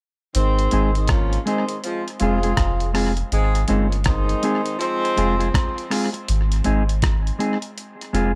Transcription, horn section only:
0.35 0.92 D#3 medium
0.35 0.92 G#3 medium
0.35 0.92 C4 loud
0.96 1.07 D#3 medium
0.96 1.07 G#3 medium
0.96 1.07 C4 medium
0.96 1.07 D#4 medium
1.10 1.39 F3 medium
1.10 1.39 A#3 medium
1.10 1.39 C#4 medium
1.10 1.39 F4 medium
1.46 1.76 D#3 medium
1.46 1.76 G#3 medium
1.46 1.76 C4 medium
1.46 1.76 D#4 medium
1.84 2.02 F3 medium
1.84 2.02 G#3 medium
1.84 2.02 C4 medium
1.84 2.02 F4 medium
2.20 2.91 G#3 medium
2.20 2.91 C4 medium
2.20 2.90 F4 medium
2.20 2.91 G#4 medium
3.31 3.61 G#3 loud
3.31 3.61 C4 loud
3.31 3.61 D#4 medium
3.31 3.61 G#4 loud
3.68 3.98 F3 medium
3.68 3.98 A#3 medium
3.68 3.98 C#4 medium
3.68 3.98 F4 medium
4.06 4.76 D#3 medium
4.06 4.76 G#3 loud
4.06 4.76 C4 medium
4.06 4.76 D#4 loud
4.79 5.86 F3 loud
4.79 5.86 G#3 loud
4.79 5.87 C4 loud

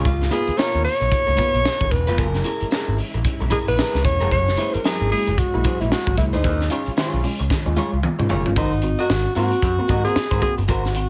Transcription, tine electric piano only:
4.32 4.49 F#3 medium
4.58 4.75 A#3 medium
4.58 4.76 E4 medium
4.85 5.02 F#3 medium
5.11 5.29 G#3 medium
5.11 5.27 A#3 medium
5.11 5.26 E4 medium
5.28 5.32 A#3 soft
5.28 5.32 E4 medium
5.54 5.67 G#3 medium
5.54 5.67 A#3 medium
5.54 5.67 E4 medium
5.65 5.82 F#3 medium
5.81 5.93 G#3 medium
5.81 5.90 A#3 medium
5.81 5.90 E4 medium
5.91 5.98 A#3 soft
5.91 5.98 E4 soft
6.07 6.20 F#3 medium
6.17 6.35 G#3 medium
6.17 6.35 A#3 medium
6.17 6.35 E4 medium
6.44 6.61 D#3 medium
6.71 6.88 C#4 medium
6.71 6.88 F4 medium
6.97 7.14 D#3 medium
7.24 7.41 G#3 medium
7.24 7.38 C#4 medium
7.24 7.38 F4 medium
7.39 7.44 C#4 soft
7.39 7.44 F4 medium
7.50 7.67 D#3 medium
7.66 7.79 G#3 medium
7.66 7.76 C#4 medium
7.66 7.76 F4 medium
7.77 7.83 C#4 soft
7.77 7.83 F4 soft
8.19 8.32 G#3 medium
8.19 8.32 C#4 medium
8.19 8.32 F4 medium
8.30 8.47 D#3 medium
8.46 8.58 G#3 medium
8.46 8.58 C#4 medium
8.46 8.59 F4 medium
8.56 8.74 G#2 medium
8.56 8.74 D#3 medium
8.83 9.00 C4 medium
8.83 9.00 F#4 medium
9.10 9.27 G#2 medium
9.10 9.27 D#3 medium
9.36 9.53 A#3 medium
9.36 9.51 C4 medium
9.36 9.51 F#4 medium
9.53 9.56 C4 soft
9.53 9.56 F#4 soft
9.79 9.91 A#3 medium
9.79 9.91 C4 medium
9.79 9.92 F#4 medium
9.90 10.07 G#2 medium
9.90 10.07 D#3 soft
10.05 10.18 A#3 medium
10.05 10.15 C4 medium
10.05 10.15 F#4 medium
10.32 10.44 G#2 medium
10.32 10.44 D#3 medium
10.42 10.59 A#3 medium
10.42 10.59 C4 medium
10.42 10.59 F#4 medium
10.69 10.86 G#2 medium
10.69 10.86 D#3 medium
10.95 11.09 C4 medium
10.95 11.09 F#4 medium

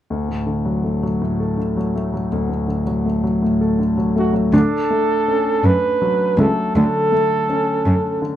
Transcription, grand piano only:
0.10 2.28 D2 soft
0.29 1.20 A2 soft
0.46 1.56 D3 soft
0.66 1.02 F#3 soft
0.84 1.94 A3 soft
1.03 1.75 F#3 soft
1.22 2.48 A2 soft
1.40 2.83 A4 soft
1.58 2.66 D3 soft
1.77 2.12 F#3 soft
1.96 3.04 A3 soft
2.14 2.85 F#3 soft
2.32 4.50 D2 soft
2.50 3.41 A2 soft
2.68 3.77 D3 soft
2.87 3.22 F#3 soft
3.05 4.14 A3 soft
3.24 3.96 F#3 soft
3.42 4.50 A2 soft
3.61 4.51 A4 soft
3.79 4.51 D3 soft
3.98 4.32 F#3 soft
4.16 4.52 A3 soft
4.33 4.52 F#3 soft
4.53 6.71 D4 medium
4.91 6.34 A3 soft
5.28 6.71 C#4 soft
6.02 7.45 F#3 soft
6.39 7.11 A3 soft
6.76 8.20 D3 medium
7.12 8.36 A3 soft
7.50 8.36 C#4 soft
8.22 8.36 D3 soft

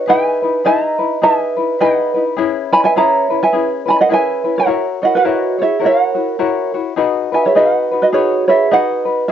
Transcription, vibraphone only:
0.06 0.61 B4 medium
0.65 1.19 D#5 medium
1.23 1.76 B4 medium
1.79 2.22 B4 medium
2.73 2.83 D#5 medium
2.85 2.95 B4 medium
2.97 3.39 C#5 medium
3.43 3.69 B4 medium
3.88 3.98 D#5 medium
3.99 4.09 A#4 medium
4.10 4.53 B4 medium
4.56 4.83 A#4 medium
5.03 5.13 A#4 medium
5.16 5.57 F#4 medium
5.60 5.81 G#4 medium
5.85 6.71 A#4 medium
7.33 7.43 B4 medium
7.45 7.55 G#4 medium
7.56 7.98 B4 medium
8.02 8.07 F#4 medium
8.14 8.45 F#4 medium
8.49 8.69 G#4 medium
8.72 9.24 B4 medium

